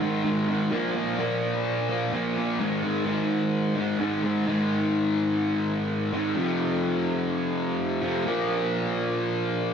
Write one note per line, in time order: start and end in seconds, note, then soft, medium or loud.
0.00 0.23 G#2 medium
0.00 0.24 D#3 medium
0.00 0.26 G#3 medium
0.24 0.70 G#2 medium
0.24 0.49 D#3 loud
0.24 0.48 G#3 loud
0.48 0.70 D#3 medium
0.48 0.71 G#3 medium
0.71 1.17 A#2 medium
0.71 0.95 F3 loud
0.71 0.93 A#3 loud
0.95 1.17 F3 medium
0.95 1.19 A#3 medium
1.18 2.11 A#2 medium
1.18 1.90 F3 medium
1.18 1.88 A#3 medium
1.89 2.12 F3 medium
1.89 2.13 A#3 medium
2.12 2.58 A#2 loud
2.12 2.36 F3 loud
2.12 2.34 A#3 loud
2.35 2.59 F3 medium
2.35 2.58 A#3 medium
2.59 3.04 G#2 loud
2.59 2.83 D#3 loud
2.59 2.81 G#3 loud
2.82 3.05 D#3 medium
2.82 3.07 G#3 medium
3.06 3.98 G#2 medium
3.06 3.76 D#3 medium
3.06 3.74 G#3 medium
3.75 3.99 D#3 medium
3.75 4.00 G#3 medium
3.99 4.45 G#2 medium
3.99 4.24 D#3 loud
3.99 4.22 G#3 loud
4.23 4.47 D#3 medium
4.23 4.46 G#3 medium
4.47 6.11 G#2 medium
4.47 6.12 D#3 medium
4.47 6.12 G#3 medium
6.12 6.35 G#2 medium
6.12 6.35 D#3 medium
6.12 6.37 G#3 medium
6.35 8.00 F2 medium
6.35 8.00 C3 medium
6.35 8.00 F3 loud
8.01 8.25 F2 medium
8.01 8.24 C3 medium
8.01 8.24 F3 medium
8.25 9.74 A#2 medium
8.25 9.74 F3 medium
8.25 9.74 A#3 medium